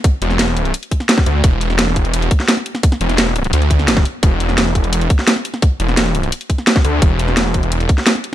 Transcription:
<<
  \new Staff \with { instrumentName = "Detuned saw bass" } { \clef bass \time 4/4 \key d \mixolydian \tempo 4 = 172 r8 e,,4. r4. d,8 | e,,2~ e,,8 r4. | r8 e,,4. d,4. r8 | e,,2~ e,,8 r4. |
r8 e,,4. r4. d,8 | e,,2~ e,,8 r4. | }
  \new DrumStaff \with { instrumentName = "Drums" } \drummode { \time 4/4 <hh bd>8 hh16 sn16 <hh sn>8 hh16 hh16 hh16 hh16 <hh bd>16 sn16 <hh sn>16 <bd sn>16 hh8 | <hh bd>8 hh16 sn16 <hh sn>8 <hh bd>16 hh16 hh16 hh16 <hh bd>16 sn16 <hh sn>16 sn16 hh16 sn16 | <hh bd>16 sn16 hh16 <hh sn>16 <hh sn>8 hh16 hh16 hh16 hh16 <hh bd>16 sn16 <hh sn>16 <hh bd sn>16 hh8 | <hh bd>8 hh16 sn16 <hh sn>8 <hh bd>16 hh16 hh16 hh16 <hh bd>16 sn16 <hh sn>16 sn16 hh16 sn16 |
<hh bd>8 hh16 sn16 <hh sn>8 hh16 hh16 hh16 hh16 <hh bd>16 sn16 <hh sn>16 <bd sn>16 hh8 | <hh bd>8 hh16 sn16 <hh sn>8 <hh bd>16 hh16 hh16 hh16 <hh bd>16 sn16 <hh sn>16 sn16 hh8 | }
>>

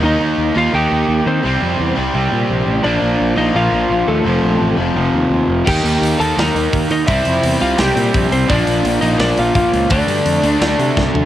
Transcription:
<<
  \new Staff \with { instrumentName = "Lead electric guitar" } { \time 4/4 \key ees \lydian \tempo 4 = 170 <ees' ees''>4. <f' f''>8 <g' g''>4. <c' c''>8~ | <c' c''>4. r2 r8 | <d' d''>4. <ees' ees''>8 <f' f''>4. <a a'>8~ | <a a'>4. r2 r8 |
<g' g''>4. <a' a''>8 <bes' bes''>4. <ees' ees''>8 | <e' e''>4. <f' f''>8 <g' g''>4. <c' c''>8 | <d' d''>4. <ees' ees''>8 <d' d''>8 <f' f''>8 <f' f''>4 | <d' d''>2.~ <d' d''>8 r8 | }
  \new Staff \with { instrumentName = "Overdriven electric guitar" } { \clef bass \time 4/4 \key ees \lydian r1 | r1 | r1 | r1 |
<ees bes ees'>4. <ees bes ees'>2~ <ees bes ees'>8 | <c g c'>4. <c g c'>2~ <c g c'>8 | <bes, f bes>4. <bes, f bes>2~ <bes, f bes>8 | <d a d'>4. <d a d'>2~ <d a d'>8 | }
  \new Staff \with { instrumentName = "Overdriven electric guitar" } { \clef bass \time 4/4 \key ees \lydian <ees bes ees'>4. <ees bes ees'>2~ <ees bes ees'>8 | <c g c'>4. <c g c'>2~ <c g c'>8 | <bes, f bes>4. <bes, f bes>2~ <bes, f bes>8 | <f, c f>4. <f, c f>2~ <f, c f>8 |
<ees bes ees'>4. <ees bes ees'>2~ <ees bes ees'>8 | <c g c'>4. <c g c'>2~ <c g c'>8 | <bes, f bes>4. <bes, f bes>2~ <bes, f bes>8 | <d a d'>4. <d a d'>2~ <d a d'>8 | }
  \new Staff \with { instrumentName = "Overdriven electric guitar" } { \clef bass \time 4/4 \key ees \lydian <ees bes ees'>2 <ees bes ees'>2 | <c g c'>2 <c g c'>2 | <bes, f bes>2 <bes, f bes>2 | <f, c f>2 <f, c f>2 |
<ees bes ees'>2 <ees bes ees'>2 | <c g c'>2 <c g c'>2 | <bes, f bes>2 <bes, f bes>2 | <d a d'>2 <d a d'>2 | }
  \new Staff \with { instrumentName = "Picked electric bass" } { \clef bass \time 4/4 \key ees \lydian ees,8 ees,8 ees,8 ees,8 ees,8 ees,8 ees,8 ees8 | c,8 f,8 e,8 c,8 c,8 bes,8 bes,,8 a,,8 | bes,,8 bes,,8 bes,,8 bes,,8 bes,,8 bes,,8 bes,,8 ees,8 | f,,8 bes,,8 a,,8 f,,8 f,,8 ees,8 ees,8 f,,8 |
ees,8 ees,8 ees,8 ees,8 ees,8 ees,8 ees,8 ees8 | c,8 f,8 e,8 c,8 c,8 bes,8 bes,,8 c,8 | bes,,8 bes,,8 bes,,8 bes,,8 bes,,8 bes,,8 bes,,8 cis,8 | d,8 g,8 f,8 d,8 d,8 c8 c,8 d,8 | }
  \new DrumStaff \with { instrumentName = "Drums" } \drummode { \time 4/4 r4 r4 r4 r4 | r4 r4 r4 r4 | r4 r4 r4 r4 | r4 r4 r4 r4 |
<cymc bd>8 hho8 hho8 hho8 <hho sn>8 hho8 <hho bd>8 hho8 | <hho bd>8 hho8 hho8 hho8 <hho sn>8 hho8 <hho bd>8 hho8 | <hho bd>8 hho8 hho8 hho8 <hho sn>8 hho8 <hho bd>8 hho8 | <hho bd>8 hho8 hho8 hho8 <hho sn>8 hho8 <bd sn>8 tomfh8 | }
>>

